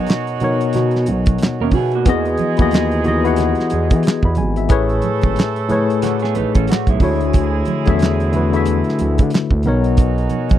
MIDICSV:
0, 0, Header, 1, 6, 480
1, 0, Start_track
1, 0, Key_signature, 4, "major"
1, 0, Tempo, 659341
1, 1503, Time_signature, 4, 2, 24, 8
1, 7707, End_track
2, 0, Start_track
2, 0, Title_t, "Tine electric piano"
2, 0, Program_c, 0, 4
2, 0, Control_c, 0, 64, 127
2, 0, Note_on_c, 0, 47, 87
2, 0, Note_on_c, 0, 59, 85
2, 0, Note_on_c, 0, 63, 78
2, 0, Note_on_c, 0, 70, 83
2, 0, Note_on_c, 0, 73, 107
2, 205, Note_off_c, 0, 47, 0
2, 210, Note_off_c, 0, 59, 0
2, 212, Note_off_c, 0, 63, 0
2, 216, Note_off_c, 0, 70, 0
2, 243, Note_off_c, 0, 73, 0
2, 293, Note_on_c, 0, 47, 82
2, 305, Note_on_c, 0, 59, 74
2, 309, Note_on_c, 0, 63, 79
2, 316, Note_on_c, 0, 70, 68
2, 321, Note_on_c, 0, 73, 97
2, 1165, Note_off_c, 0, 47, 0
2, 1171, Note_off_c, 0, 59, 0
2, 1173, Note_off_c, 0, 63, 0
2, 1177, Note_off_c, 0, 70, 0
2, 1179, Note_off_c, 0, 73, 0
2, 1497, Note_on_c, 0, 52, 101
2, 1504, Note_on_c, 0, 59, 99
2, 1512, Control_c, 0, 64, 0
2, 1513, Note_on_c, 0, 66, 104
2, 1518, Note_on_c, 0, 68, 98
2, 1524, Note_on_c, 0, 75, 122
2, 1639, Control_c, 0, 64, 127
2, 1832, Note_off_c, 0, 52, 0
2, 1835, Note_off_c, 0, 59, 0
2, 1840, Note_off_c, 0, 66, 0
2, 1842, Note_off_c, 0, 68, 0
2, 1845, Note_off_c, 0, 75, 0
2, 1876, Note_on_c, 0, 64, 89
2, 1885, Note_on_c, 0, 59, 75
2, 1895, Note_on_c, 0, 66, 77
2, 1900, Note_on_c, 0, 68, 79
2, 1907, Note_on_c, 0, 75, 91
2, 2183, Note_off_c, 0, 64, 0
2, 2188, Note_off_c, 0, 59, 0
2, 2192, Note_off_c, 0, 66, 0
2, 2195, Note_off_c, 0, 68, 0
2, 2199, Note_off_c, 0, 75, 0
2, 2210, Note_on_c, 0, 52, 76
2, 2217, Note_on_c, 0, 59, 70
2, 2224, Note_on_c, 0, 66, 74
2, 2231, Note_on_c, 0, 68, 66
2, 2242, Note_on_c, 0, 75, 85
2, 2343, Note_off_c, 0, 52, 0
2, 2346, Note_off_c, 0, 59, 0
2, 2349, Note_off_c, 0, 66, 0
2, 2353, Note_off_c, 0, 68, 0
2, 2359, Note_off_c, 0, 75, 0
2, 2359, Note_on_c, 0, 64, 87
2, 2363, Note_on_c, 0, 59, 86
2, 2372, Note_on_c, 0, 66, 82
2, 2380, Note_on_c, 0, 67, 65
2, 2382, Note_on_c, 0, 78, 103
2, 2411, Note_off_c, 0, 67, 0
2, 2425, Note_on_c, 0, 68, 83
2, 2711, Note_off_c, 0, 78, 0
2, 3094, Note_on_c, 0, 83, 67
2, 3182, Note_off_c, 0, 83, 0
2, 3185, Note_off_c, 0, 64, 0
2, 3187, Note_off_c, 0, 59, 0
2, 3187, Note_on_c, 0, 80, 66
2, 3192, Note_off_c, 0, 66, 0
2, 3218, Note_off_c, 0, 68, 0
2, 3321, Note_off_c, 0, 80, 0
2, 3330, Note_on_c, 0, 76, 62
2, 3410, Note_on_c, 0, 45, 104
2, 3413, Note_on_c, 0, 57, 95
2, 3419, Note_on_c, 0, 68, 100
2, 3428, Note_on_c, 0, 71, 108
2, 3432, Control_c, 0, 64, 0
2, 3437, Note_on_c, 0, 73, 118
2, 3556, Note_off_c, 0, 76, 0
2, 3567, Control_c, 0, 64, 127
2, 4067, Note_off_c, 0, 45, 0
2, 4068, Note_off_c, 0, 57, 0
2, 4071, Note_off_c, 0, 68, 0
2, 4076, Note_off_c, 0, 71, 0
2, 4080, Note_off_c, 0, 73, 0
2, 4135, Note_on_c, 0, 45, 82
2, 4141, Note_on_c, 0, 57, 75
2, 4150, Note_on_c, 0, 68, 77
2, 4156, Note_on_c, 0, 71, 76
2, 4165, Note_on_c, 0, 73, 99
2, 5006, Note_off_c, 0, 45, 0
2, 5009, Note_off_c, 0, 57, 0
2, 5014, Note_off_c, 0, 68, 0
2, 5017, Note_off_c, 0, 71, 0
2, 5021, Note_off_c, 0, 73, 0
2, 5097, Note_on_c, 0, 50, 92
2, 5103, Note_on_c, 0, 57, 83
2, 5114, Control_c, 0, 64, 0
2, 5115, Note_on_c, 0, 64, 88
2, 5115, Note_on_c, 0, 66, 85
2, 5125, Note_on_c, 0, 73, 93
2, 5227, Control_c, 0, 64, 127
2, 5637, Note_off_c, 0, 50, 0
2, 5641, Note_off_c, 0, 57, 0
2, 5646, Note_off_c, 0, 64, 0
2, 5646, Note_off_c, 0, 66, 0
2, 5651, Note_off_c, 0, 73, 0
2, 5720, Note_on_c, 0, 50, 88
2, 5727, Note_on_c, 0, 57, 77
2, 5733, Note_on_c, 0, 64, 79
2, 5743, Note_on_c, 0, 66, 74
2, 5749, Note_on_c, 0, 76, 95
2, 6025, Note_off_c, 0, 50, 0
2, 6029, Note_off_c, 0, 57, 0
2, 6031, Note_off_c, 0, 64, 0
2, 6037, Note_off_c, 0, 66, 0
2, 6039, Note_off_c, 0, 76, 0
2, 6061, Note_on_c, 0, 50, 73
2, 6070, Note_on_c, 0, 57, 71
2, 6076, Note_on_c, 0, 64, 70
2, 6085, Note_on_c, 0, 66, 70
2, 6088, Note_on_c, 0, 71, 80
2, 6188, Note_off_c, 0, 50, 0
2, 6192, Note_off_c, 0, 57, 0
2, 6195, Note_off_c, 0, 64, 0
2, 6200, Note_off_c, 0, 66, 0
2, 6202, Note_off_c, 0, 71, 0
2, 6203, Note_on_c, 0, 50, 90
2, 6212, Note_on_c, 0, 57, 83
2, 6215, Note_on_c, 0, 64, 83
2, 6227, Note_on_c, 0, 66, 84
2, 6234, Note_on_c, 0, 76, 97
2, 7022, Note_off_c, 0, 50, 0
2, 7023, Note_on_c, 0, 47, 83
2, 7026, Note_off_c, 0, 57, 0
2, 7027, Note_off_c, 0, 64, 0
2, 7030, Note_on_c, 0, 59, 90
2, 7031, Note_on_c, 0, 63, 83
2, 7033, Note_off_c, 0, 66, 0
2, 7033, Control_c, 0, 64, 0
2, 7037, Note_off_c, 0, 76, 0
2, 7040, Note_on_c, 0, 70, 87
2, 7050, Note_on_c, 0, 73, 97
2, 7146, Control_c, 0, 64, 127
2, 7707, Note_off_c, 0, 47, 0
2, 7707, Note_off_c, 0, 59, 0
2, 7707, Note_off_c, 0, 63, 0
2, 7707, Note_off_c, 0, 70, 0
2, 7707, Note_off_c, 0, 73, 0
2, 7707, End_track
3, 0, Start_track
3, 0, Title_t, "Clean electric guitar"
3, 0, Program_c, 1, 27
3, 1175, Note_on_c, 1, 70, 79
3, 1181, Note_on_c, 1, 61, 61
3, 1263, Note_off_c, 1, 70, 0
3, 1266, Note_off_c, 1, 61, 0
3, 1271, Note_on_c, 1, 68, 80
3, 1282, Note_on_c, 1, 59, 70
3, 1403, Note_off_c, 1, 68, 0
3, 1409, Note_off_c, 1, 59, 0
3, 1419, Note_on_c, 1, 58, 56
3, 1422, Note_on_c, 1, 66, 71
3, 1641, Note_off_c, 1, 58, 0
3, 1641, Note_off_c, 1, 66, 0
3, 4389, Note_on_c, 1, 66, 69
3, 4396, Note_on_c, 1, 57, 60
3, 4522, Note_off_c, 1, 66, 0
3, 4526, Note_off_c, 1, 57, 0
3, 4532, Note_on_c, 1, 68, 81
3, 4536, Note_on_c, 1, 59, 71
3, 4621, Note_off_c, 1, 68, 0
3, 4623, Note_off_c, 1, 59, 0
3, 4631, Note_on_c, 1, 71, 81
3, 4638, Note_on_c, 1, 63, 70
3, 4763, Note_off_c, 1, 71, 0
3, 4767, Note_off_c, 1, 63, 0
3, 4767, Note_on_c, 1, 69, 81
3, 4771, Note_on_c, 1, 61, 72
3, 4859, Note_off_c, 1, 69, 0
3, 4861, Note_off_c, 1, 61, 0
3, 4869, Note_on_c, 1, 57, 69
3, 4870, Note_on_c, 1, 66, 64
3, 5001, Note_off_c, 1, 66, 0
3, 5003, Note_off_c, 1, 57, 0
3, 5011, Note_on_c, 1, 56, 62
3, 5013, Note_on_c, 1, 64, 63
3, 5236, Note_off_c, 1, 64, 0
3, 5237, Note_off_c, 1, 56, 0
3, 7707, End_track
4, 0, Start_track
4, 0, Title_t, "Horn section"
4, 0, Program_c, 2, 61
4, 0, Note_on_c, 2, 54, 67
4, 0, Note_on_c, 2, 61, 68
4, 0, Note_on_c, 2, 63, 63
4, 0, Note_on_c, 2, 66, 73
4, 1232, Note_off_c, 2, 54, 0
4, 1232, Note_off_c, 2, 61, 0
4, 1232, Note_off_c, 2, 63, 0
4, 1232, Note_off_c, 2, 66, 0
4, 1500, Note_on_c, 2, 59, 62
4, 1500, Note_on_c, 2, 63, 70
4, 1501, Note_on_c, 2, 56, 73
4, 1501, Note_on_c, 2, 68, 79
4, 3152, Note_off_c, 2, 59, 0
4, 3152, Note_off_c, 2, 63, 0
4, 3153, Note_off_c, 2, 56, 0
4, 3153, Note_off_c, 2, 68, 0
4, 3418, Note_on_c, 2, 57, 67
4, 3418, Note_on_c, 2, 64, 68
4, 3418, Note_on_c, 2, 69, 73
4, 3419, Note_on_c, 2, 61, 70
4, 4832, Note_off_c, 2, 57, 0
4, 4832, Note_off_c, 2, 61, 0
4, 4832, Note_off_c, 2, 64, 0
4, 4832, Note_off_c, 2, 69, 0
4, 5106, Note_on_c, 2, 56, 67
4, 5106, Note_on_c, 2, 61, 67
4, 5106, Note_on_c, 2, 64, 69
4, 5106, Note_on_c, 2, 68, 73
4, 6755, Note_off_c, 2, 56, 0
4, 6755, Note_off_c, 2, 61, 0
4, 6755, Note_off_c, 2, 68, 0
4, 6756, Note_off_c, 2, 64, 0
4, 7022, Note_on_c, 2, 61, 68
4, 7022, Note_on_c, 2, 63, 69
4, 7023, Note_on_c, 2, 54, 65
4, 7023, Note_on_c, 2, 66, 70
4, 7707, Note_off_c, 2, 54, 0
4, 7707, Note_off_c, 2, 61, 0
4, 7707, Note_off_c, 2, 63, 0
4, 7707, Note_off_c, 2, 66, 0
4, 7707, End_track
5, 0, Start_track
5, 0, Title_t, "Analog synth bass"
5, 0, Program_c, 3, 38
5, 549, Note_on_c, 3, 47, 95
5, 787, Note_on_c, 3, 35, 85
5, 798, Note_off_c, 3, 47, 0
5, 1004, Note_off_c, 3, 35, 0
5, 1029, Note_on_c, 3, 39, 43
5, 1085, Note_off_c, 3, 39, 0
5, 1170, Note_on_c, 3, 39, 85
5, 1252, Note_off_c, 3, 39, 0
5, 1256, Note_on_c, 3, 47, 95
5, 1503, Note_on_c, 3, 40, 98
5, 1514, Note_off_c, 3, 47, 0
5, 1722, Note_off_c, 3, 40, 0
5, 1891, Note_on_c, 3, 39, 88
5, 2579, Note_off_c, 3, 39, 0
5, 2716, Note_on_c, 3, 40, 100
5, 2840, Note_off_c, 3, 40, 0
5, 2851, Note_on_c, 3, 52, 89
5, 2937, Note_off_c, 3, 52, 0
5, 3086, Note_on_c, 3, 40, 94
5, 3199, Note_on_c, 3, 32, 82
5, 3210, Note_off_c, 3, 40, 0
5, 3411, Note_off_c, 3, 32, 0
5, 3427, Note_on_c, 3, 33, 96
5, 3644, Note_off_c, 3, 33, 0
5, 3817, Note_on_c, 3, 32, 102
5, 3901, Note_off_c, 3, 32, 0
5, 4644, Note_on_c, 3, 33, 52
5, 4696, Note_off_c, 3, 33, 0
5, 4777, Note_on_c, 3, 33, 93
5, 4861, Note_off_c, 3, 33, 0
5, 5007, Note_on_c, 3, 35, 93
5, 5095, Note_off_c, 3, 35, 0
5, 5103, Note_on_c, 3, 38, 99
5, 5554, Note_off_c, 3, 38, 0
5, 5738, Note_on_c, 3, 40, 93
5, 6423, Note_off_c, 3, 40, 0
5, 6561, Note_on_c, 3, 38, 89
5, 6683, Note_off_c, 3, 38, 0
5, 6696, Note_on_c, 3, 50, 92
5, 6780, Note_off_c, 3, 50, 0
5, 6925, Note_on_c, 3, 38, 94
5, 7014, Note_off_c, 3, 38, 0
5, 7041, Note_on_c, 3, 35, 98
5, 7252, Note_off_c, 3, 35, 0
5, 7269, Note_on_c, 3, 35, 102
5, 7485, Note_off_c, 3, 35, 0
5, 7658, Note_on_c, 3, 34, 93
5, 7707, Note_off_c, 3, 34, 0
5, 7707, End_track
6, 0, Start_track
6, 0, Title_t, "Drums"
6, 48, Note_on_c, 9, 42, 71
6, 62, Note_on_c, 9, 62, 30
6, 75, Note_on_c, 9, 38, 111
6, 77, Note_on_c, 9, 39, 82
6, 121, Note_off_c, 9, 42, 0
6, 135, Note_off_c, 9, 62, 0
6, 148, Note_off_c, 9, 38, 0
6, 150, Note_off_c, 9, 39, 0
6, 198, Note_on_c, 9, 42, 37
6, 271, Note_off_c, 9, 42, 0
6, 293, Note_on_c, 9, 42, 55
6, 302, Note_on_c, 9, 63, 68
6, 302, Note_on_c, 9, 64, 65
6, 365, Note_off_c, 9, 42, 0
6, 375, Note_off_c, 9, 63, 0
6, 375, Note_off_c, 9, 64, 0
6, 442, Note_on_c, 9, 42, 48
6, 515, Note_off_c, 9, 42, 0
6, 530, Note_on_c, 9, 42, 82
6, 544, Note_on_c, 9, 62, 30
6, 544, Note_on_c, 9, 64, 64
6, 552, Note_on_c, 9, 38, 34
6, 603, Note_off_c, 9, 42, 0
6, 617, Note_off_c, 9, 62, 0
6, 617, Note_off_c, 9, 64, 0
6, 625, Note_off_c, 9, 38, 0
6, 663, Note_on_c, 9, 42, 34
6, 697, Note_on_c, 9, 38, 30
6, 735, Note_off_c, 9, 42, 0
6, 770, Note_off_c, 9, 38, 0
6, 772, Note_on_c, 9, 42, 65
6, 780, Note_on_c, 9, 63, 47
6, 845, Note_off_c, 9, 42, 0
6, 853, Note_off_c, 9, 63, 0
6, 915, Note_on_c, 9, 42, 55
6, 924, Note_on_c, 9, 36, 94
6, 988, Note_off_c, 9, 42, 0
6, 997, Note_off_c, 9, 36, 0
6, 1008, Note_on_c, 9, 42, 76
6, 1030, Note_on_c, 9, 62, 27
6, 1043, Note_on_c, 9, 38, 113
6, 1044, Note_on_c, 9, 39, 90
6, 1081, Note_off_c, 9, 42, 0
6, 1102, Note_off_c, 9, 62, 0
6, 1116, Note_off_c, 9, 38, 0
6, 1117, Note_off_c, 9, 39, 0
6, 1243, Note_on_c, 9, 46, 43
6, 1249, Note_on_c, 9, 36, 85
6, 1254, Note_on_c, 9, 63, 69
6, 1254, Note_on_c, 9, 64, 65
6, 1316, Note_off_c, 9, 46, 0
6, 1321, Note_off_c, 9, 36, 0
6, 1327, Note_off_c, 9, 63, 0
6, 1327, Note_off_c, 9, 64, 0
6, 1395, Note_on_c, 9, 42, 44
6, 1468, Note_off_c, 9, 42, 0
6, 1495, Note_on_c, 9, 42, 87
6, 1499, Note_on_c, 9, 36, 119
6, 1507, Note_on_c, 9, 62, 29
6, 1568, Note_off_c, 9, 42, 0
6, 1571, Note_off_c, 9, 36, 0
6, 1579, Note_off_c, 9, 62, 0
6, 1641, Note_on_c, 9, 42, 34
6, 1714, Note_off_c, 9, 42, 0
6, 1729, Note_on_c, 9, 42, 55
6, 1742, Note_on_c, 9, 63, 69
6, 1802, Note_off_c, 9, 42, 0
6, 1815, Note_off_c, 9, 63, 0
6, 1869, Note_on_c, 9, 42, 51
6, 1884, Note_on_c, 9, 63, 70
6, 1886, Note_on_c, 9, 36, 105
6, 1942, Note_off_c, 9, 42, 0
6, 1957, Note_off_c, 9, 63, 0
6, 1958, Note_off_c, 9, 36, 0
6, 1973, Note_on_c, 9, 42, 72
6, 1988, Note_on_c, 9, 62, 33
6, 2001, Note_on_c, 9, 38, 112
6, 2003, Note_on_c, 9, 39, 88
6, 2046, Note_off_c, 9, 42, 0
6, 2061, Note_off_c, 9, 62, 0
6, 2074, Note_off_c, 9, 38, 0
6, 2075, Note_off_c, 9, 39, 0
6, 2122, Note_on_c, 9, 42, 37
6, 2194, Note_off_c, 9, 42, 0
6, 2215, Note_on_c, 9, 42, 52
6, 2229, Note_on_c, 9, 63, 64
6, 2229, Note_on_c, 9, 64, 70
6, 2288, Note_off_c, 9, 42, 0
6, 2302, Note_off_c, 9, 63, 0
6, 2302, Note_off_c, 9, 64, 0
6, 2366, Note_on_c, 9, 42, 49
6, 2439, Note_off_c, 9, 42, 0
6, 2449, Note_on_c, 9, 42, 90
6, 2469, Note_on_c, 9, 64, 64
6, 2471, Note_on_c, 9, 38, 36
6, 2522, Note_off_c, 9, 42, 0
6, 2541, Note_off_c, 9, 64, 0
6, 2544, Note_off_c, 9, 38, 0
6, 2585, Note_on_c, 9, 42, 34
6, 2619, Note_on_c, 9, 38, 34
6, 2658, Note_off_c, 9, 42, 0
6, 2692, Note_off_c, 9, 38, 0
6, 2693, Note_on_c, 9, 42, 66
6, 2706, Note_on_c, 9, 63, 47
6, 2766, Note_off_c, 9, 42, 0
6, 2778, Note_off_c, 9, 63, 0
6, 2842, Note_on_c, 9, 42, 49
6, 2846, Note_on_c, 9, 36, 95
6, 2914, Note_off_c, 9, 42, 0
6, 2919, Note_off_c, 9, 36, 0
6, 2934, Note_on_c, 9, 42, 73
6, 2958, Note_on_c, 9, 62, 29
6, 2968, Note_on_c, 9, 38, 111
6, 2970, Note_on_c, 9, 39, 93
6, 3006, Note_off_c, 9, 42, 0
6, 3031, Note_off_c, 9, 62, 0
6, 3041, Note_off_c, 9, 38, 0
6, 3043, Note_off_c, 9, 39, 0
6, 3077, Note_on_c, 9, 36, 92
6, 3150, Note_off_c, 9, 36, 0
6, 3167, Note_on_c, 9, 42, 59
6, 3181, Note_on_c, 9, 62, 31
6, 3181, Note_on_c, 9, 63, 66
6, 3181, Note_on_c, 9, 64, 65
6, 3240, Note_off_c, 9, 42, 0
6, 3254, Note_off_c, 9, 62, 0
6, 3254, Note_off_c, 9, 63, 0
6, 3254, Note_off_c, 9, 64, 0
6, 3321, Note_on_c, 9, 42, 48
6, 3394, Note_off_c, 9, 42, 0
6, 3414, Note_on_c, 9, 42, 84
6, 3421, Note_on_c, 9, 36, 111
6, 3433, Note_on_c, 9, 62, 30
6, 3487, Note_off_c, 9, 42, 0
6, 3494, Note_off_c, 9, 36, 0
6, 3506, Note_off_c, 9, 62, 0
6, 3563, Note_on_c, 9, 42, 35
6, 3635, Note_off_c, 9, 42, 0
6, 3653, Note_on_c, 9, 42, 58
6, 3668, Note_on_c, 9, 63, 75
6, 3726, Note_off_c, 9, 42, 0
6, 3741, Note_off_c, 9, 63, 0
6, 3796, Note_on_c, 9, 42, 45
6, 3806, Note_on_c, 9, 63, 69
6, 3811, Note_on_c, 9, 36, 92
6, 3869, Note_off_c, 9, 42, 0
6, 3879, Note_off_c, 9, 63, 0
6, 3884, Note_off_c, 9, 36, 0
6, 3902, Note_on_c, 9, 42, 71
6, 3910, Note_on_c, 9, 62, 34
6, 3929, Note_on_c, 9, 38, 109
6, 3931, Note_on_c, 9, 39, 87
6, 3975, Note_off_c, 9, 42, 0
6, 3983, Note_off_c, 9, 62, 0
6, 4002, Note_off_c, 9, 38, 0
6, 4004, Note_off_c, 9, 39, 0
6, 4049, Note_on_c, 9, 42, 38
6, 4122, Note_off_c, 9, 42, 0
6, 4145, Note_on_c, 9, 42, 55
6, 4150, Note_on_c, 9, 62, 31
6, 4150, Note_on_c, 9, 63, 69
6, 4150, Note_on_c, 9, 64, 63
6, 4218, Note_off_c, 9, 42, 0
6, 4222, Note_off_c, 9, 62, 0
6, 4222, Note_off_c, 9, 63, 0
6, 4222, Note_off_c, 9, 64, 0
6, 4296, Note_on_c, 9, 42, 49
6, 4369, Note_off_c, 9, 42, 0
6, 4384, Note_on_c, 9, 42, 89
6, 4389, Note_on_c, 9, 64, 63
6, 4406, Note_on_c, 9, 38, 38
6, 4457, Note_off_c, 9, 42, 0
6, 4462, Note_off_c, 9, 64, 0
6, 4479, Note_off_c, 9, 38, 0
6, 4510, Note_on_c, 9, 42, 34
6, 4544, Note_on_c, 9, 38, 34
6, 4583, Note_off_c, 9, 42, 0
6, 4617, Note_off_c, 9, 38, 0
6, 4622, Note_on_c, 9, 42, 61
6, 4626, Note_on_c, 9, 62, 32
6, 4626, Note_on_c, 9, 63, 44
6, 4695, Note_off_c, 9, 42, 0
6, 4698, Note_off_c, 9, 62, 0
6, 4698, Note_off_c, 9, 63, 0
6, 4766, Note_on_c, 9, 42, 52
6, 4771, Note_on_c, 9, 36, 99
6, 4838, Note_off_c, 9, 42, 0
6, 4844, Note_off_c, 9, 36, 0
6, 4859, Note_on_c, 9, 42, 81
6, 4874, Note_on_c, 9, 62, 29
6, 4894, Note_on_c, 9, 38, 119
6, 4896, Note_on_c, 9, 39, 95
6, 4932, Note_off_c, 9, 42, 0
6, 4947, Note_off_c, 9, 62, 0
6, 4967, Note_off_c, 9, 38, 0
6, 4969, Note_off_c, 9, 39, 0
6, 4999, Note_on_c, 9, 42, 38
6, 5001, Note_on_c, 9, 36, 89
6, 5072, Note_off_c, 9, 42, 0
6, 5074, Note_off_c, 9, 36, 0
6, 5094, Note_on_c, 9, 46, 42
6, 5096, Note_on_c, 9, 36, 80
6, 5099, Note_on_c, 9, 63, 67
6, 5099, Note_on_c, 9, 64, 68
6, 5167, Note_off_c, 9, 46, 0
6, 5169, Note_off_c, 9, 36, 0
6, 5172, Note_off_c, 9, 63, 0
6, 5172, Note_off_c, 9, 64, 0
6, 5245, Note_on_c, 9, 42, 48
6, 5318, Note_off_c, 9, 42, 0
6, 5339, Note_on_c, 9, 42, 86
6, 5345, Note_on_c, 9, 36, 109
6, 5352, Note_on_c, 9, 62, 30
6, 5412, Note_off_c, 9, 42, 0
6, 5418, Note_off_c, 9, 36, 0
6, 5425, Note_off_c, 9, 62, 0
6, 5572, Note_on_c, 9, 42, 56
6, 5590, Note_on_c, 9, 62, 36
6, 5590, Note_on_c, 9, 63, 75
6, 5645, Note_off_c, 9, 42, 0
6, 5663, Note_off_c, 9, 62, 0
6, 5663, Note_off_c, 9, 63, 0
6, 5719, Note_on_c, 9, 42, 49
6, 5730, Note_on_c, 9, 63, 68
6, 5733, Note_on_c, 9, 36, 98
6, 5792, Note_off_c, 9, 42, 0
6, 5802, Note_off_c, 9, 63, 0
6, 5806, Note_off_c, 9, 36, 0
6, 5818, Note_on_c, 9, 42, 78
6, 5846, Note_on_c, 9, 38, 107
6, 5847, Note_on_c, 9, 39, 85
6, 5891, Note_off_c, 9, 42, 0
6, 5918, Note_off_c, 9, 38, 0
6, 5920, Note_off_c, 9, 39, 0
6, 5970, Note_on_c, 9, 42, 36
6, 6042, Note_off_c, 9, 42, 0
6, 6063, Note_on_c, 9, 42, 58
6, 6069, Note_on_c, 9, 63, 66
6, 6069, Note_on_c, 9, 64, 62
6, 6136, Note_off_c, 9, 42, 0
6, 6142, Note_off_c, 9, 63, 0
6, 6142, Note_off_c, 9, 64, 0
6, 6212, Note_on_c, 9, 42, 53
6, 6285, Note_off_c, 9, 42, 0
6, 6300, Note_on_c, 9, 42, 91
6, 6311, Note_on_c, 9, 62, 29
6, 6311, Note_on_c, 9, 64, 63
6, 6373, Note_off_c, 9, 42, 0
6, 6383, Note_off_c, 9, 62, 0
6, 6383, Note_off_c, 9, 64, 0
6, 6437, Note_on_c, 9, 42, 33
6, 6471, Note_on_c, 9, 38, 33
6, 6510, Note_off_c, 9, 42, 0
6, 6542, Note_on_c, 9, 42, 62
6, 6544, Note_off_c, 9, 38, 0
6, 6545, Note_on_c, 9, 62, 29
6, 6545, Note_on_c, 9, 63, 46
6, 6615, Note_off_c, 9, 42, 0
6, 6618, Note_off_c, 9, 62, 0
6, 6618, Note_off_c, 9, 63, 0
6, 6683, Note_on_c, 9, 42, 53
6, 6691, Note_on_c, 9, 36, 101
6, 6756, Note_off_c, 9, 42, 0
6, 6764, Note_off_c, 9, 36, 0
6, 6773, Note_on_c, 9, 42, 78
6, 6796, Note_on_c, 9, 62, 27
6, 6807, Note_on_c, 9, 38, 117
6, 6809, Note_on_c, 9, 39, 91
6, 6845, Note_off_c, 9, 42, 0
6, 6868, Note_off_c, 9, 62, 0
6, 6880, Note_off_c, 9, 38, 0
6, 6882, Note_off_c, 9, 39, 0
6, 6920, Note_on_c, 9, 36, 92
6, 6993, Note_off_c, 9, 36, 0
6, 7010, Note_on_c, 9, 42, 59
6, 7021, Note_on_c, 9, 63, 69
6, 7021, Note_on_c, 9, 64, 67
6, 7082, Note_off_c, 9, 42, 0
6, 7094, Note_off_c, 9, 63, 0
6, 7094, Note_off_c, 9, 64, 0
6, 7165, Note_on_c, 9, 42, 43
6, 7238, Note_off_c, 9, 42, 0
6, 7259, Note_on_c, 9, 42, 87
6, 7264, Note_on_c, 9, 36, 117
6, 7267, Note_on_c, 9, 62, 32
6, 7332, Note_off_c, 9, 42, 0
6, 7336, Note_off_c, 9, 36, 0
6, 7340, Note_off_c, 9, 62, 0
6, 7411, Note_on_c, 9, 42, 36
6, 7484, Note_off_c, 9, 42, 0
6, 7495, Note_on_c, 9, 42, 55
6, 7504, Note_on_c, 9, 62, 36
6, 7504, Note_on_c, 9, 63, 68
6, 7567, Note_off_c, 9, 42, 0
6, 7577, Note_off_c, 9, 62, 0
6, 7577, Note_off_c, 9, 63, 0
6, 7640, Note_on_c, 9, 42, 48
6, 7644, Note_on_c, 9, 63, 73
6, 7652, Note_on_c, 9, 36, 102
6, 7707, Note_off_c, 9, 36, 0
6, 7707, Note_off_c, 9, 42, 0
6, 7707, Note_off_c, 9, 63, 0
6, 7707, End_track
0, 0, End_of_file